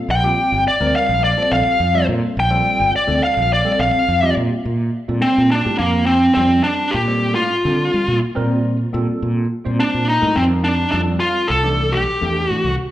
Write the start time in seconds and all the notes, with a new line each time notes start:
0.09 A#1 G5
0.24 G3 C4 F4 G4
0.52 G1
0.66 D5, muted fretless electric bass stroke
0.80 D2 G3 C4 F4 A#4
0.96 F5
1.09 A#1
1.24 D5
1.37 G3 C4 F4 A4
1.52 A#1 F5
1.80 F2
1.95 G3 C4 F4 A4
2.08 A#2
2.37 A#1 G5
2.50 G3 C4 F4 A4
2.80 G1
2.94 D5, muted fretless electric bass stroke
3.07 D2 G3 C4 F4 A4
3.23 F5
3.37 A#1
3.53 D5
3.65 G3 C4 F4 A4
3.79 A#1 F5
4.08 F2
4.22 G3 C4 F4 G4
4.37 A#2
4.65 A#2
5.08 A#2 G3 C4 F4 A4
5.22 C4
5.38 A#2
5.51 D4
5.64 A2 G3 C4 F4 G4
5.78 F2 A#3
6.06 C4
6.35 F2 G3 C4 F4 A4
6.63 D4
6.91 A#2 G4
7.07 G3 C4 F4 A4
7.35 A2 F4
7.64 D3 G3 C4 F4 A4
7.94 G3
8.08 A#2
8.35 A#2 G3 C4 F4 A#4
8.93 A#2 G3 C4 F4 A4
9.22 A#2
9.65 A#2 G3 C4 F4 C5
9.80 D4
9.94 A#2
10.08 D#4
10.21 A2 G3 C4 F4 A#4
10.36 F2 C4
10.64 D4
10.92 F2 G3 C4 D4 F4 A4
11.20 F4
11.48 C2 A4
11.64 E3 A3 D4 G4
11.92 B1 G4
12.21 E2 E3 A3 D4 A4
12.48 A2 F#4
12.64 C2